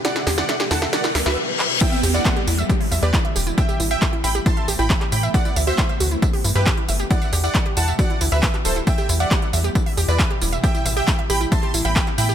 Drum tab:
CC |----------------|x---------------|----------------|----------------|
HH |xxoxxxoxxxox----|xxoxxxoxxooxxxox|xxoxxxoxxxoxxxox|xxoxxxoxxooxxxox|
TB |----------------|xxxxx-xxx-xxx-xx|xxxxx-xxx-xxx-xx|xxxxx-xxx-xxx-xx|
CP |--------------x-|----x-------x---|----x-------xx--|----x-------x---|
SD |oooooooooooo----|----------------|----------------|----------------|
BD |----------------|o---o---o---o---|o---o---o---o---|o---o---o---o---|

CC |----------------|----------------|----------------|
HH |xxoxxxoxxxoxxxox|xxoxxxoxxooxxxox|xxoxxxo-xxoxxxox|
TB |xxxxx-xxx-xxx-xx|xxxxx-xxx-xxx-xx|xxxxx-xxx-xxx-xx|
CP |----x-------xx--|----x-------x---|----x-------xx--|
SD |----------------|----------------|----------------|
BD |o---o---o---o---|o---o---o---o---|o---o---o---o---|